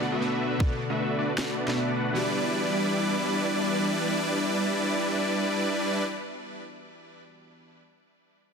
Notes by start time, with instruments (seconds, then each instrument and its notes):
Already playing: analog synth pad D3 A3 B3, synth keys F#4 A4 D5
0.00 synth keys B2 B3 F#4 A4 F#5
0.12 supersaw synth A3 D4 F#4 B4 E5
0.20 synth keys B2 B3 F#4 A4 D5
0.51 supersaw synth A3 D4 F#4 B4 E5
0.58 synth keys B2 B3 F#4 A4 D5, supersaw synth F#4, kick
0.90 supersaw synth A3 D4 F#4 B4 E5
1.19 supersaw synth A3 D4 F#4 B4 D5
1.38 supersaw synth A3 D4 F#4 B4 D5, snare
1.67 synth keys B2 B3 F#4 A4 D5, supersaw synth A3 D4 F#4 B4 E5, snare
1.76 synth keys B2 B3 F#4 A4 D5
1.87 supersaw synth A3 D4 F#4 B4 D5
1.97 supersaw synth A3 D4 F#4 B4 F#5
2.13 synth keys E3 B3 F#4, analog synth pad E3 G3 B3 D4, supersaw synth G3 D4 E4 B4 D5
2.17 synth keys G4 D5